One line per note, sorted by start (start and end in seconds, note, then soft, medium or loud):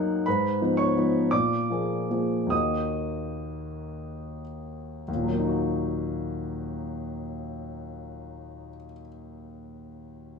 0.00 0.28 F#2 medium
0.00 0.29 F#3 soft
0.00 0.29 A#3 soft
0.00 0.28 D#4 soft
0.00 0.23 F#5 medium
0.00 0.29 G#5 medium
0.00 0.27 F#6 medium
0.00 0.28 G#6 medium
0.26 0.60 G#2 medium
0.26 0.75 B4 medium
0.26 0.78 B5 medium
0.61 0.92 F3 soft
0.61 0.93 B3 soft
0.61 0.93 D#4 soft
0.77 1.28 C#5 medium
0.77 1.31 C#6 medium
0.97 1.29 F3 soft
0.97 1.29 B3 soft
0.97 1.29 D#4 soft
1.31 1.69 A#2 medium
1.31 2.47 D5 medium
1.31 2.51 D6 medium
1.70 2.06 F3 soft
1.70 2.06 A#3 soft
1.70 2.07 G#4 soft
2.11 2.48 F3 soft
2.11 2.48 A#3 soft
2.11 2.48 G#4 soft
2.47 5.01 D#2 soft
2.47 5.02 D#3 soft
2.47 5.02 A#3 soft
2.47 5.03 F#4 soft
2.47 4.43 D#6 medium
2.51 4.40 D#5 soft
5.08 8.68 D#2 medium
5.15 8.76 A#2 soft
5.24 8.84 F#3 soft
5.32 8.92 A#3 soft
5.39 8.99 D#4 soft
5.47 9.07 F#4 soft